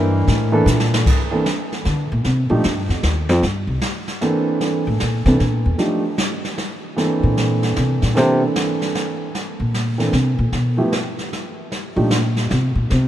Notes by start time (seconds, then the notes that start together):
Already playing: G2 E3 A#3 D4 A#4
0.28 A2, kick, snare
0.52 E3 A#3 D4 A4
0.66 A#2, snare, hi-hat pedal
0.80 snare
0.94 snare
1.06 brush sweep, kick, snare, crash
1.31 E3 A#3 C4 D4 A4
1.46 snare
1.72 snare
1.85 D3, snare
2.12 A#2
2.24 C3, brush sweep, snare
2.50 A#2 F3 A3 D4 D#4 G4
2.64 G2, snare
2.89 F2, snare
3.03 D#2, snare
3.29 F2, snare
3.42 G2, brush sweep, snare
3.67 C2
3.82 snare
4.08 snare
4.21 E3 A#3 C4 D4 A4, snare
4.61 brush sweep, snare
4.87 A2
5.00 A#2, snare
5.26 C3 E3 A#3 C4 D4 A4, snare
5.40 A#2, snare
5.66 E2
5.78 F3 A3 D4 D#4 G4, brush sweep, snare
6.18 snare
6.44 snare
6.58 snare
6.96 E3 A#3 C4 D4 A4, brush sweep, snare
7.23 A#2
7.37 snare
7.63 snare
7.76 C3, snare
8.02 A#2, snare
8.15 C3 E3 A#3 C4 D4 A4, brush sweep, snare
8.56 snare
8.82 snare
8.95 snare
9.35 brush sweep, snare
9.60 A#2
9.74 snare
9.98 E3 A#3 C4 D4 A4, snare
10.13 C3, snare
10.39 A#2
10.52 B2, brush sweep, snare
10.77 F3 A3 B3 E4 G4
10.92 snare
11.19 snare
11.33 snare
11.72 brush sweep, snare
11.96 A#2 F3 A3 D4 D#4 G4
12.11 snare
12.36 snare
12.50 C3, snare
12.75 A#2
12.90 C3, brush sweep, snare